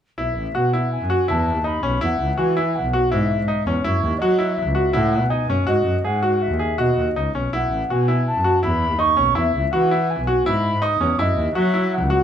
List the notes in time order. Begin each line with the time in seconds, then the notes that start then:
0.18 B1 E4 E5
0.36 A1
0.54 B2 F#4 F#5
0.73 E4
0.92 G#5
1.00 F#2
1.10 F#4
1.28 E2 E4 A5
1.56 D#2
1.64 D#4 B5
1.83 B1 C#4
2.01 E2 E4 F#5
2.19 C#2
2.37 E3 F#4 G#5
2.57 E4
2.75 F#5
2.83 B1
2.93 F#4
3.10 G#2 E4 E5
3.38 G#2
3.48 D#4
3.66 E2 C#4
3.82 F#2 E4 C#5
4.02 D#2
4.18 F#3 F#4 D#5
4.39 E4
4.54 E5
4.66 C#2
4.75 F#4
4.93 A2 E4 F#5
5.20 B2
5.29 D#4 G#5
5.47 F#2 C#4
5.66 G#2 F#4 D#5
5.84 F#2
6.03 G#2 G#4 F#5
6.23 F#4
6.41 E5
6.50 D#2
6.59 G#4
6.78 B2 F#4 D#5
6.97 D#2
7.15 C#2 D#4
7.34 B1 C#4
7.52 B1 E4 F#5
7.70 A1
7.90 B2 F#4 G#5
8.08 E4
8.26 A5
8.36 F#2
8.44 F#4
8.63 E2 E4 B5
8.91 D#2
8.99 D#4 C#6
9.17 B1 C#4
9.35 E2 E4 E5
9.55 C#2
9.71 E3 F#4 F#5
9.91 E4
10.10 G#5
10.19 B1
10.27 F#4
10.46 G#2 E4 B5
10.73 G#2
10.82 D#4 D#6
10.99 E2 C#4
11.19 F#2 E4 D#5
11.37 D#2
11.54 F#3 F#4 E5
11.74 E4
11.93 F#5
12.01 C#2
12.10 F#4